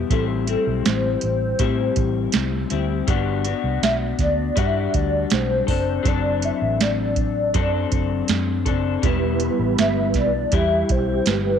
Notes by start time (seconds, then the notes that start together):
Already playing: E3 B3
0.10 A1 A2 G3 C4 E4 A4, kick, closed hi-hat
0.46 G3 C4 E4 A4, closed hi-hat
0.67 B1
0.86 A1 C5, snare, closed hi-hat
1.21 A1, closed hi-hat
1.59 A2 G3 C4 E4, kick, closed hi-hat
1.96 A1, kick, closed hi-hat
2.32 C2, snare, closed hi-hat
2.70 D2 G3 C4 E4, closed hi-hat
3.07 G1 G3 B3 D4 F#4, kick, closed hi-hat
3.44 B3 D4 F#4, closed hi-hat
3.64 C2
3.82 B1 E5, snare, closed hi-hat
4.19 D2 D5, kick, snare, closed hi-hat
4.56 G2 G3 D4 F#4 E5, kick, closed hi-hat
4.94 D2 D5, kick, closed hi-hat
5.30 B1 C5, snare, closed hi-hat
5.67 F#1 C4 D4 A4 C5, kick, open hi-hat
6.03 F#1 F#3 C4 D4 A4, kick, closed hi-hat
6.08 D5
6.42 E5, closed hi-hat
6.62 A1
6.81 D5, snare, closed hi-hat
7.16 kick, closed hi-hat
7.54 F#2 F#3 C4 D4 A4, kick, closed hi-hat
7.92 F#1, kick, closed hi-hat
8.28 F#2, snare, closed hi-hat
8.66 F#1 C4 D4 A4, kick, closed hi-hat
9.02 E1 E3 G3 B3 E4 B4, kick, closed hi-hat
9.40 closed hi-hat
9.59 A1
9.78 G1 E5, snare, closed hi-hat
10.14 B1 D5, kick, snare, closed hi-hat
10.51 E2 E3 G3 E4 G4 E5, kick, closed hi-hat
10.89 B1 C5, kick, closed hi-hat
11.26 G1 B4, snare, closed hi-hat